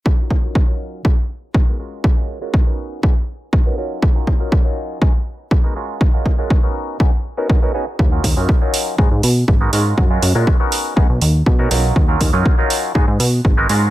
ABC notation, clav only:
X:1
M:4/4
L:1/16
Q:1/4=121
K:Ebm
V:1 name="Clav"
z [G,DEFB]2 [G,DEFB]2 [G,DEFB]3 z4 z [A,CEGB] [A,DFGB]2- | [A,DFGB] [A,DFGB]2 [A,DFGB]2 [CDEGB]3 [=B,^C^D^FA] z4 [B,CDF^A] [^F,CD=FA]2- | [^F,^C^D=F^A] [G,_DEFB]2 [G,DEFB]2 [G,DEFB]3 [_A,_CEG_A] z4 [A,CEGB] [A,DFGB]2- | [A,DFGB] [A,DFGB]2 [A,DFGB]2 [CDEGB]3 [=B,^C^D^FA] z2 [B,CDF^A] z [B,CDFA] [B,CDF_A] z |
z [G,DEFB]2 [G,DEFB]2 [G,DEFB]3 [A,CEGA] z4 [A,CEGB] [A,DFGB]2- | [A,DFGB] [A,DFGB]2 [A,DFGB]2 [CDEGB]3 [=B,^C^D^FA] z4 [B,CDF^A] [^F,CD=FA]2- | [^F,^C^D=F^A] [G,_DEFB]2 [G,DEFB]2 [G,DEFB]3 [_A,_CEG_A] z4 [A,CEGB] [A,DFGB]2 |]